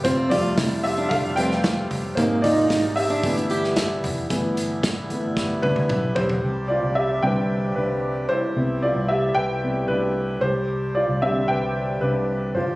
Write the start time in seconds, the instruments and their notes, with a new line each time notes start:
Already playing: accordion G3
0.04 fingered electric bass F1, accordion C3 A3 F4, steel-string acoustic guitar C4, upright piano F4 C5, kick, hi-hat pedal, open hi-hat
0.30 upright piano F3 G3 A3 F4 D5, steel-string acoustic guitar F4, floor tom, hi-hat pedal, open hi-hat
0.57 fingered electric bass F1, steel-string acoustic guitar E4, kick, snare, hi-hat pedal, open hi-hat
0.83 upright piano G4 E5, hi-hat pedal, open hi-hat
0.98 steel-string acoustic guitar D4
1.09 fingered electric bass F1, upright piano A4 F5, kick, hi-hat pedal, open hi-hat
1.36 upright piano F3 G3 A3 B4 G5, steel-string acoustic guitar C4, hi-hat pedal, open hi-hat
1.51 snare
1.64 kick, snare, hi-hat pedal, open hi-hat
1.91 fingered electric bass F1, floor tom, hi-hat pedal, open hi-hat
2.15 fingered electric bass G#1, upright piano C3 G#3 A#3 D#4 C5, accordion G#3 A#3 D#4, steel-string acoustic guitar A#3, kick, hi-hat pedal, open hi-hat
2.42 steel-string acoustic guitar D#4, upright piano F4 D5, floor tom, hi-hat pedal, open hi-hat
2.70 fingered electric bass G#1, steel-string acoustic guitar D#4, kick, snare, hi-hat pedal, open hi-hat
2.96 upright piano G4 E5, hi-hat pedal, open hi-hat
3.10 steel-string acoustic guitar D4, open hi-hat
3.23 fingered electric bass G1, accordion D3 G3 B3 E4, upright piano E3 A3 B3, kick, hi-hat pedal, open hi-hat
3.37 hi-hat pedal
3.50 steel-string acoustic guitar G4, hi-hat pedal, open hi-hat
3.64 snare
3.76 kick, snare, hi-hat pedal, open hi-hat
4.03 fingered electric bass F1, floor tom, hi-hat pedal, open hi-hat
4.29 fingered electric bass G1, accordion D3 G3 B3 E4, upright piano E3 A3 B3, kick, closed hi-hat
4.57 closed hi-hat
4.83 kick, snare, closed hi-hat
5.10 fingered electric bass G1, upright piano E3 A3 B3, closed hi-hat
5.37 kick, snare
5.62 fingered electric bass D2, upright piano D4 B4, high tom
5.76 high tom
5.89 fingered electric bass B1, kick, mid tom
6.15 fingered electric bass B1, upright piano G4 C5, floor tom
6.29 floor tom
6.42 fingered electric bass C2, accordion C3 G3 D4 G4
6.68 upright piano F4 D5
6.83 fingered electric bass C2
6.95 upright piano G4 E5
7.23 fingered electric bass C2, upright piano D3 G3 C4 B4 G5
7.76 fingered electric bass C2, upright piano D4 B4
8.29 upright piano E4 C5
8.56 fingered electric bass C2, upright piano C3 G3 B3, accordion A3 E4
8.82 upright piano F4 D5
8.96 fingered electric bass C2
9.08 upright piano G4 E5
9.35 fingered electric bass C2, upright piano B4 G5
9.63 upright piano C3 G3 B3
9.88 fingered electric bass C2, upright piano D4 B4
10.41 fingered electric bass C2, accordion G3 D4, upright piano G4 C5
10.95 upright piano F4 D5
11.09 fingered electric bass C2
11.22 upright piano D3 G3 C4 G4 E5
11.48 fingered electric bass C2, upright piano B4 G5
12.01 fingered electric bass C2, upright piano D4 B4
12.55 fingered electric bass G1, accordion C3 F3, upright piano F4 C5